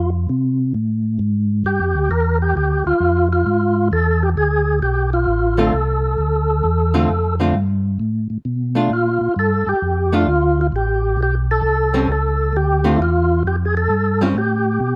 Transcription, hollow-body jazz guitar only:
0, 0, Header, 1, 2, 480
1, 0, Start_track
1, 0, Tempo, 453858
1, 1743, Time_signature, 4, 2, 24, 8
1, 15817, End_track
2, 0, Start_track
2, 0, Title_t, "Hollow-body jazz guitar"
2, 0, Program_c, 0, 26
2, 5895, Note_on_c, 0, 50, 64
2, 5902, Note_on_c, 0, 57, 69
2, 5907, Note_on_c, 0, 60, 66
2, 5911, Note_on_c, 0, 65, 79
2, 6042, Note_off_c, 0, 50, 0
2, 6046, Note_off_c, 0, 57, 0
2, 6048, Note_off_c, 0, 60, 0
2, 6050, Note_off_c, 0, 65, 0
2, 7340, Note_on_c, 0, 50, 75
2, 7343, Note_on_c, 0, 57, 76
2, 7346, Note_on_c, 0, 60, 76
2, 7351, Note_on_c, 0, 65, 73
2, 7484, Note_off_c, 0, 50, 0
2, 7486, Note_off_c, 0, 57, 0
2, 7487, Note_off_c, 0, 60, 0
2, 7490, Note_off_c, 0, 65, 0
2, 7823, Note_on_c, 0, 50, 65
2, 7830, Note_on_c, 0, 57, 56
2, 7832, Note_on_c, 0, 60, 71
2, 7838, Note_on_c, 0, 65, 74
2, 7966, Note_off_c, 0, 50, 0
2, 7969, Note_off_c, 0, 57, 0
2, 7971, Note_off_c, 0, 60, 0
2, 7973, Note_off_c, 0, 65, 0
2, 9256, Note_on_c, 0, 57, 61
2, 9267, Note_on_c, 0, 62, 68
2, 9271, Note_on_c, 0, 65, 77
2, 9403, Note_off_c, 0, 57, 0
2, 9408, Note_off_c, 0, 62, 0
2, 9410, Note_off_c, 0, 65, 0
2, 10708, Note_on_c, 0, 57, 67
2, 10715, Note_on_c, 0, 62, 75
2, 10721, Note_on_c, 0, 65, 80
2, 10849, Note_off_c, 0, 57, 0
2, 10853, Note_off_c, 0, 62, 0
2, 10856, Note_off_c, 0, 65, 0
2, 12626, Note_on_c, 0, 55, 76
2, 12630, Note_on_c, 0, 60, 76
2, 12636, Note_on_c, 0, 61, 81
2, 12769, Note_off_c, 0, 55, 0
2, 12771, Note_off_c, 0, 60, 0
2, 12774, Note_off_c, 0, 61, 0
2, 13583, Note_on_c, 0, 57, 74
2, 13584, Note_on_c, 0, 50, 70
2, 13590, Note_on_c, 0, 60, 73
2, 13593, Note_on_c, 0, 65, 72
2, 13727, Note_off_c, 0, 50, 0
2, 13727, Note_off_c, 0, 57, 0
2, 13731, Note_off_c, 0, 60, 0
2, 13732, Note_off_c, 0, 65, 0
2, 15031, Note_on_c, 0, 55, 80
2, 15041, Note_on_c, 0, 60, 75
2, 15046, Note_on_c, 0, 61, 74
2, 15171, Note_off_c, 0, 55, 0
2, 15176, Note_off_c, 0, 60, 0
2, 15179, Note_off_c, 0, 61, 0
2, 15817, End_track
0, 0, End_of_file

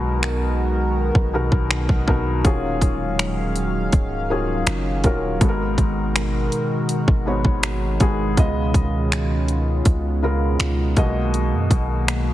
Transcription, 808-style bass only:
0, 0, Header, 1, 2, 480
1, 0, Start_track
1, 0, Tempo, 740741
1, 1587, Time_signature, 4, 2, 24, 8
1, 7993, End_track
2, 0, Start_track
2, 0, Title_t, "808-style bass"
2, 0, Program_c, 0, 38
2, 0, Note_on_c, 0, 35, 91
2, 720, Note_off_c, 0, 35, 0
2, 745, Note_on_c, 0, 35, 101
2, 976, Note_off_c, 0, 35, 0
2, 984, Note_on_c, 0, 35, 100
2, 1216, Note_off_c, 0, 35, 0
2, 1225, Note_on_c, 0, 35, 99
2, 1572, Note_off_c, 0, 35, 0
2, 1585, Note_on_c, 0, 27, 110
2, 1816, Note_off_c, 0, 27, 0
2, 1824, Note_on_c, 0, 27, 95
2, 2519, Note_off_c, 0, 27, 0
2, 2545, Note_on_c, 0, 25, 98
2, 3007, Note_off_c, 0, 25, 0
2, 3025, Note_on_c, 0, 30, 94
2, 3256, Note_off_c, 0, 30, 0
2, 3266, Note_on_c, 0, 27, 100
2, 3497, Note_off_c, 0, 27, 0
2, 3505, Note_on_c, 0, 32, 108
2, 3736, Note_off_c, 0, 32, 0
2, 3744, Note_on_c, 0, 32, 94
2, 4206, Note_off_c, 0, 32, 0
2, 4586, Note_on_c, 0, 32, 96
2, 4817, Note_off_c, 0, 32, 0
2, 4825, Note_on_c, 0, 32, 104
2, 5172, Note_off_c, 0, 32, 0
2, 5187, Note_on_c, 0, 32, 96
2, 5417, Note_off_c, 0, 32, 0
2, 5427, Note_on_c, 0, 37, 105
2, 5657, Note_off_c, 0, 37, 0
2, 5665, Note_on_c, 0, 37, 95
2, 6360, Note_off_c, 0, 37, 0
2, 6386, Note_on_c, 0, 37, 99
2, 6848, Note_off_c, 0, 37, 0
2, 6867, Note_on_c, 0, 37, 101
2, 7097, Note_off_c, 0, 37, 0
2, 7107, Note_on_c, 0, 35, 107
2, 7468, Note_on_c, 0, 42, 89
2, 7478, Note_off_c, 0, 35, 0
2, 7582, Note_off_c, 0, 42, 0
2, 7585, Note_on_c, 0, 35, 91
2, 7993, Note_off_c, 0, 35, 0
2, 7993, End_track
0, 0, End_of_file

